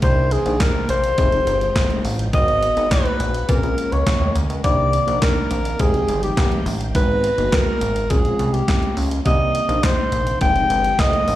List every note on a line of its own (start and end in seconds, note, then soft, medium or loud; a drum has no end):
0.00 0.38 C2 loud
0.00 1.17 C3 medium
0.00 2.31 D#3 medium
0.00 1.16 A#3 medium
0.00 0.35 D4 medium
0.00 0.35 D#4 medium
0.00 0.35 G4 medium
0.00 0.35 A#4 medium
0.00 0.34 C5 loud
0.00 1.17 D5 medium
0.00 kick loud
0.00 closed hi-hat medium
0.31 0.63 G#4 loud
0.31 closed hi-hat medium
0.46 0.58 A#1 loud
0.46 1.11 D4 medium
0.46 1.11 D#4 medium
0.46 1.11 G4 medium
0.46 1.11 C5 medium
0.46 closed hi-hat soft
0.60 0.89 A#4 medium
0.60 kick loud
0.60 snare loud
0.60 clap loud
0.60 closed hi-hat loud
0.89 1.13 A#1 loud
0.89 2.01 C5 loud
0.89 closed hi-hat medium
1.04 closed hi-hat medium
1.18 1.42 F1 loud
1.18 2.32 F3 medium
1.18 2.32 G#3 medium
1.18 1.30 C4 medium
1.18 1.30 D#4 medium
1.18 1.30 G4 medium
1.18 1.30 G#4 medium
1.18 2.32 G5 medium
1.18 kick loud
1.18 closed hi-hat medium
1.32 2.08 C4 medium
1.32 2.08 D#4 medium
1.32 2.08 G4 medium
1.32 2.08 G#4 medium
1.32 closed hi-hat soft
1.47 1.71 G1 medium
1.47 closed hi-hat medium
1.61 closed hi-hat soft
1.76 1.99 F1 medium
1.76 kick loud
1.76 snare loud
1.76 clap medium
1.76 closed hi-hat medium
1.90 closed hi-hat soft
2.04 2.28 A1 loud
2.04 open hi-hat medium
2.19 closed hi-hat medium
2.33 2.69 G#1 loud
2.33 3.48 G#3 medium
2.33 2.66 B3 medium
2.33 3.48 B3 loud
2.33 2.66 D#4 medium
2.33 2.66 F#4 medium
2.33 3.48 F#4 medium
2.33 2.66 A#4 medium
2.33 2.87 D#5 loud
2.33 3.48 A#5 medium
2.33 kick loud
2.33 closed hi-hat medium
2.48 closed hi-hat soft
2.63 closed hi-hat medium
2.76 2.89 G#1 loud
2.76 3.41 B3 medium
2.76 3.41 D#4 medium
2.76 3.41 F#4 medium
2.76 3.42 A#5 medium
2.76 closed hi-hat soft
2.91 3.51 B4 loud
2.91 kick loud
2.91 snare loud
2.91 clap loud
2.91 closed hi-hat loud
3.06 closed hi-hat soft
3.20 3.44 A#1 loud
3.20 closed hi-hat medium
3.34 closed hi-hat medium
3.48 3.61 A#2 loud
3.48 4.63 G#3 medium
3.48 5.77 A#3 medium
3.48 3.60 C4 medium
3.48 3.60 C#4 medium
3.48 4.63 C#4 medium
3.48 3.60 F4 medium
3.48 3.61 G#4 medium
3.48 3.94 A#4 medium
3.48 kick loud
3.48 closed hi-hat loud
3.63 3.75 A#1 medium
3.63 4.39 A#3 medium
3.63 4.39 C#4 medium
3.63 4.39 F4 medium
3.63 4.39 A#4 medium
3.63 closed hi-hat soft
3.78 closed hi-hat medium
3.92 4.04 C#2 medium
3.92 4.36 C#5 medium
3.92 closed hi-hat soft
4.07 kick loud
4.07 snare loud
4.07 clap medium
4.07 closed hi-hat loud
4.21 4.33 D#2 medium
4.36 4.47 D2 medium
4.36 closed hi-hat medium
4.50 4.62 C#2 medium
4.50 closed hi-hat medium
4.64 5.00 C2 loud
4.64 5.78 C3 medium
4.64 6.93 D#3 loud
4.64 4.96 A#3 medium
4.64 4.96 D4 medium
4.64 4.96 D#4 medium
4.64 4.97 G4 medium
4.64 5.78 D5 medium
4.64 5.24 D5 loud
4.64 kick loud
4.64 closed hi-hat medium
4.93 closed hi-hat medium
5.07 5.19 A#1 loud
5.07 5.72 A#3 medium
5.07 5.72 D4 medium
5.07 5.72 D#4 medium
5.07 5.72 A#4 medium
5.07 closed hi-hat soft
5.22 5.82 A#4 loud
5.22 kick loud
5.22 snare loud
5.22 clap loud
5.22 closed hi-hat loud
5.51 5.74 A#1 medium
5.51 closed hi-hat medium
5.65 closed hi-hat medium
5.79 6.03 F1 loud
5.79 6.94 F3 medium
5.79 5.91 G#3 medium
5.79 6.94 G#3 medium
5.79 5.91 C4 medium
5.79 5.91 D#4 medium
5.79 5.91 G4 medium
5.79 6.23 G#4 loud
5.79 6.94 G5 medium
5.79 kick loud
5.79 closed hi-hat loud
5.94 6.69 G#3 medium
5.94 6.69 C4 medium
5.94 6.70 D#4 medium
5.94 6.70 G4 medium
5.94 closed hi-hat soft
6.08 6.32 G1 medium
6.08 closed hi-hat medium
6.23 6.64 G4 medium
6.23 closed hi-hat soft
6.37 6.61 F1 loud
6.37 kick loud
6.37 snare loud
6.37 clap medium
6.37 closed hi-hat medium
6.52 closed hi-hat soft
6.66 6.90 A1 loud
6.66 open hi-hat medium
6.81 closed hi-hat medium
6.95 7.30 G#1 loud
6.95 7.27 G#3 medium
6.95 9.24 G#3 medium
6.95 7.27 B3 medium
6.95 7.27 D#4 medium
6.95 8.09 F#4 medium
6.95 7.28 F#4 medium
6.95 8.10 G#4 medium
6.95 7.55 B4 loud
6.95 8.09 A#5 medium
6.95 kick loud
6.95 closed hi-hat medium
7.24 closed hi-hat medium
7.38 7.50 G1 loud
7.38 8.03 A#3 medium
7.38 8.03 B3 medium
7.38 8.03 D#4 medium
7.38 8.03 F#4 medium
7.38 closed hi-hat soft
7.52 8.12 A#4 loud
7.52 kick loud
7.52 snare loud
7.52 clap loud
7.52 closed hi-hat loud
7.81 8.05 G#1 loud
7.81 closed hi-hat medium
7.96 closed hi-hat medium
8.10 8.34 A#1 loud
8.10 9.25 C#3 medium
8.10 8.22 G#3 medium
8.10 10.39 A#3 medium
8.10 8.22 C4 medium
8.10 8.22 C#4 medium
8.10 8.22 F4 medium
8.10 8.55 G#4 medium
8.10 kick loud
8.10 closed hi-hat medium
8.24 9.00 G#3 medium
8.24 9.00 C4 medium
8.24 9.00 C#4 medium
8.24 9.00 F4 medium
8.24 closed hi-hat soft
8.39 8.63 C2 loud
8.39 closed hi-hat medium
8.53 8.97 G4 medium
8.53 closed hi-hat soft
8.68 kick loud
8.68 snare loud
8.68 clap medium
8.68 closed hi-hat medium
8.83 closed hi-hat soft
8.97 9.21 C#2 medium
8.97 open hi-hat medium
9.11 closed hi-hat medium
9.25 9.61 C2 medium
9.25 10.40 C3 medium
9.25 10.40 D#3 medium
9.25 9.58 A#3 medium
9.25 9.58 C4 medium
9.25 10.40 C4 medium
9.25 9.58 D#4 medium
9.25 9.58 G4 medium
9.25 9.85 D#5 loud
9.25 kick loud
9.25 closed hi-hat medium
9.55 closed hi-hat medium
9.69 9.81 A#1 loud
9.69 10.34 A#3 medium
9.69 10.34 D4 medium
9.69 10.34 D#4 medium
9.69 10.34 G4 medium
9.69 closed hi-hat medium
9.83 10.41 C5 loud
9.83 kick loud
9.83 snare loud
9.83 clap loud
9.83 closed hi-hat loud
10.12 10.36 A#1 medium
10.12 closed hi-hat loud
10.27 closed hi-hat medium
10.41 10.65 F1 loud
10.41 11.36 F3 medium
10.41 10.52 G#3 medium
10.41 11.36 G#3 medium
10.41 10.53 C4 medium
10.41 11.36 D#4 medium
10.41 10.53 D#4 medium
10.41 11.36 G4 medium
10.41 10.53 G4 medium
10.41 11.01 G5 loud
10.41 kick loud
10.41 closed hi-hat medium
10.55 11.31 G#3 medium
10.55 11.31 C4 medium
10.55 11.31 D#4 medium
10.55 11.31 G4 medium
10.55 closed hi-hat soft
10.70 10.94 G1 loud
10.70 closed hi-hat medium
10.84 closed hi-hat soft
10.99 11.22 F1 medium
10.99 11.36 D#5 loud
10.99 kick loud
10.99 snare loud
10.99 clap medium
10.99 closed hi-hat medium
11.13 closed hi-hat soft
11.28 11.36 A1 loud
11.28 open hi-hat medium